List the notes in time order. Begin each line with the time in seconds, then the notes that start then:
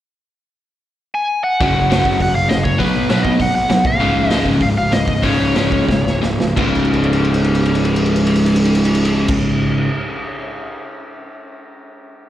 1.15 G#5
1.44 F#5
1.61 F#1 F#2 C#3 F#3 F#5, kick, open hi-hat
1.76 F#1
1.89 F#1 F#2 C#3 F#3, snare, open hi-hat
2.05 F#1, kick
2.19 F#1 F#2 C#3 F#5, kick, open hi-hat
2.35 F#1 F5
2.49 F#1 F#2 C#3 D#5, snare, open hi-hat
2.64 F#1 C#5, kick
2.78 B1 B2 F#3 B3 B4, kick, open hi-hat
2.95 B1
3.09 B1 B2 F#3 B3 B4, snare, open hi-hat
3.23 B1 D#5, kick
3.40 B1 B2 F#3 F#5, kick, open hi-hat
3.55 B1 F#5
3.69 B1 B2 F#3, snare, open hi-hat
3.85 C#1 F5, kick
3.99 C#1 C#2 G#2 C#3, open hi-hat
4.16 C#1
4.30 C#1 C#2 G#2 C#3 D#5, snare, open hi-hat
4.46 C#1, kick
4.61 C#1 C#2 G#2 F5, kick, open hi-hat
4.78 C#1 F5
4.92 C#1 C#2 G#2 D#5, snare, open hi-hat
5.08 C#1, kick
5.23 C#1 C#2 G#2 C#3 C#5, kick, open hi-hat
5.40 C#1
5.54 C#1 C#2 G#2 C#3, snare, open hi-hat
5.72 C#1, kick
5.89 C#1 C#2 G#2, kick, snare
6.06 C#1, snare
6.22 C#1 C#2 G#2, snare
6.39 C#1, snare
6.57 C#1 C#2 G#2 C#3, kick, crash
6.75 crash
6.85 ride
6.93 crash
7.03 ride
7.13 crash
7.24 ride
7.34 crash
7.44 ride
7.55 crash
7.65 ride
7.75 crash
7.85 ride
7.96 crash
8.06 ride
8.16 crash
8.27 ride
8.36 crash
8.46 ride
8.56 crash
8.65 ride
8.75 crash
8.85 ride
8.95 crash
9.05 ride
9.28 kick, crash